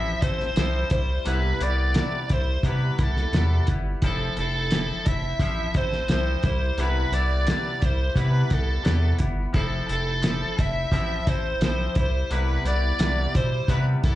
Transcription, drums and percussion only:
0.22 kick medium
0.22 closed hi-hat medium
0.40 snare soft
0.56 snare loud
0.56 closed hi-hat medium
0.90 kick loud
0.90 closed hi-hat medium
1.26 closed hi-hat medium
1.61 closed hi-hat medium
1.94 snare loud
1.94 closed hi-hat medium
2.29 kick loud
2.29 closed hi-hat medium
2.63 kick medium
2.63 closed hi-hat medium
2.99 kick medium
2.99 closed hi-hat medium
3.16 snare soft
3.33 snare loud
3.33 closed hi-hat medium
3.67 kick medium
3.67 closed hi-hat medium
4.02 kick loud
4.02 closed hi-hat medium
4.37 closed hi-hat medium
4.71 snare loud
4.71 closed hi-hat medium
5.06 kick loud
5.06 closed hi-hat medium
5.40 kick medium
5.40 closed hi-hat medium
5.74 kick loud
5.74 closed hi-hat medium
5.92 snare soft
6.08 snare loud
6.08 closed hi-hat medium
6.43 kick loud
6.43 closed hi-hat medium
6.78 closed hi-hat medium
7.13 closed hi-hat medium
7.47 snare loud
7.47 closed hi-hat medium
7.82 kick medium
7.82 closed hi-hat medium
8.16 kick medium
8.16 closed hi-hat medium
8.50 kick medium
8.50 closed hi-hat medium
8.85 snare loud
8.85 closed hi-hat medium
9.19 kick medium
9.19 closed hi-hat medium
9.54 kick loud
9.54 closed hi-hat medium
9.89 closed hi-hat medium
10.23 snare loud
10.23 closed hi-hat medium
10.58 kick medium
10.58 closed hi-hat medium
10.92 kick medium
10.92 closed hi-hat medium
11.27 kick medium
11.27 closed hi-hat medium
11.61 snare loud
11.61 closed hi-hat medium
11.95 kick loud
11.95 closed hi-hat medium
12.31 closed hi-hat medium
12.66 closed hi-hat medium
12.99 snare loud
12.99 closed hi-hat medium
13.35 kick medium
13.35 closed hi-hat medium
13.68 kick medium
13.68 closed hi-hat medium
14.04 kick loud
14.04 closed hi-hat medium

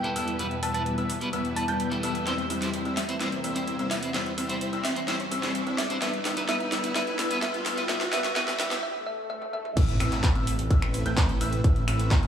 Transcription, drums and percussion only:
0.04 closed hi-hat soft
0.16 open hi-hat loud
0.28 closed hi-hat medium
0.39 closed hi-hat soft
0.51 closed hi-hat soft
0.63 open hi-hat loud
0.74 closed hi-hat soft
0.86 closed hi-hat soft
0.98 closed hi-hat soft
1.10 open hi-hat loud
1.21 closed hi-hat soft
1.33 closed hi-hat soft
1.45 closed hi-hat soft
1.56 open hi-hat loud
1.68 closed hi-hat soft
1.80 closed hi-hat soft
1.92 closed hi-hat soft
2.03 open hi-hat loud
2.15 closed hi-hat soft
2.27 snare soft
2.27 closed hi-hat soft
2.38 closed hi-hat soft
2.50 open hi-hat loud
2.62 snare soft
2.62 closed hi-hat medium
2.74 closed hi-hat soft
2.85 closed hi-hat soft
2.97 snare medium
2.97 open hi-hat loud
3.09 closed hi-hat soft
3.21 snare medium
3.21 closed hi-hat soft
3.32 closed hi-hat soft
3.44 open hi-hat loud
3.56 closed hi-hat medium
3.68 closed hi-hat soft
3.79 closed hi-hat soft
3.91 snare medium
3.91 open hi-hat loud
4.03 closed hi-hat soft
4.14 snare medium
4.14 closed hi-hat medium
4.26 closed hi-hat soft
4.38 open hi-hat loud
4.50 closed hi-hat medium
4.61 closed hi-hat soft
4.73 closed hi-hat soft
4.85 snare medium
4.85 open hi-hat loud
4.96 closed hi-hat medium
5.08 snare medium
5.08 closed hi-hat medium
5.20 closed hi-hat soft
5.32 open hi-hat loud
5.43 snare medium
5.43 closed hi-hat medium
5.55 closed hi-hat medium
5.67 closed hi-hat soft
5.78 snare medium
5.78 open hi-hat loud
5.90 closed hi-hat soft
6.02 snare medium
6.02 closed hi-hat medium
6.13 closed hi-hat soft
6.25 snare medium
6.25 open hi-hat loud
6.37 closed hi-hat medium
6.49 snare medium
6.49 closed hi-hat medium
6.60 closed hi-hat soft
6.72 snare medium
6.72 open hi-hat loud
6.84 closed hi-hat medium
6.96 snare medium
6.96 closed hi-hat medium
7.07 closed hi-hat soft
7.19 snare medium
7.19 open hi-hat loud
7.31 closed hi-hat medium
7.42 snare medium
7.42 closed hi-hat medium
7.54 closed hi-hat soft
7.66 snare medium
7.66 open hi-hat loud
7.78 closed hi-hat medium
7.89 snare medium
7.89 closed hi-hat medium
8.01 snare medium
8.01 closed hi-hat soft
8.13 snare medium
8.13 open hi-hat loud
8.24 snare medium
8.24 closed hi-hat medium
8.36 snare medium
8.36 closed hi-hat medium
8.48 snare medium
8.48 closed hi-hat soft
8.60 snare loud
8.60 open hi-hat loud
8.71 snare medium
8.71 closed hi-hat medium
9.30 high tom medium
9.42 high tom medium
9.53 mid tom medium
9.65 mid tom medium
9.77 kick loud
9.77 closed hi-hat medium
9.77 crash loud
9.89 closed hi-hat soft
10.00 finger snap medium
10.00 open hi-hat loud
10.12 clap soft
10.12 closed hi-hat medium
10.24 kick loud
10.24 clap loud
10.24 closed hi-hat medium
10.35 closed hi-hat soft
10.47 open hi-hat loud
10.59 closed hi-hat medium
10.71 kick loud
10.71 closed hi-hat medium
10.82 finger snap medium
10.82 closed hi-hat soft
10.94 open hi-hat loud
11.06 closed hi-hat medium
11.17 kick loud
11.17 clap loud
11.17 closed hi-hat medium
11.29 closed hi-hat soft
11.41 open hi-hat loud
11.53 closed hi-hat medium
11.64 kick loud
11.64 closed hi-hat medium
11.76 closed hi-hat soft
11.88 finger snap medium
11.88 open hi-hat loud
11.99 closed hi-hat medium
12.11 kick loud
12.11 clap loud
12.11 closed hi-hat medium
12.23 closed hi-hat soft

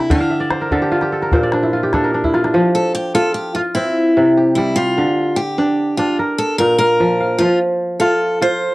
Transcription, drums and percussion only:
0.10 calabash thump medium
0.51 calabash click medium
0.61 calabash click soft
0.71 calabash thump medium
1.01 calabash click soft
1.22 calabash click soft
1.32 calabash thump medium
1.42 calabash click soft
1.52 calabash click medium
1.63 calabash click soft
1.93 calabash thump medium
1.93 calabash click medium
2.04 calabash click soft
2.14 calabash click soft
2.24 calabash thump soft
2.34 calabash click soft
2.44 calabash click medium

